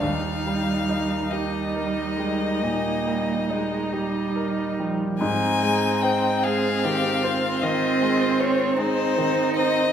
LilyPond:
<<
  \new Staff \with { instrumentName = "Violin" } { \time 12/8 \key ees \major \tempo 4. = 49 f''4. ees''1 r8 | \key aes \major aes''4 g''8 f''4. ees''4 des''8 c''4 ees''8 | }
  \new Staff \with { instrumentName = "Violin" } { \time 12/8 \key ees \major r1. | \key aes \major ees'4. aes'8 g'8 f'2 ees'4. | }
  \new Staff \with { instrumentName = "Viola" } { \time 12/8 \key ees \major ees'1~ ees'4.~ ees'16 r16 | \key aes \major c'1. | }
  \new Staff \with { instrumentName = "Cello" } { \clef bass \time 12/8 \key ees \major g4. g4 aes8 bes4 aes8 g4 f8 | \key aes \major r2. c'4. ees'4. | }
  \new Staff \with { instrumentName = "Grand piano" } { \clef bass \time 12/8 \key ees \major ees,8 g8 ees'8 g'8 bes'8 g8 bes,8 g8 ees'8 g'8 bes'8 g8 | \key aes \major aes,8 aes8 c''8 aes8 ees8 c''8 ees8 aes8 c''8 aes8 ees8 c''8 | }
>>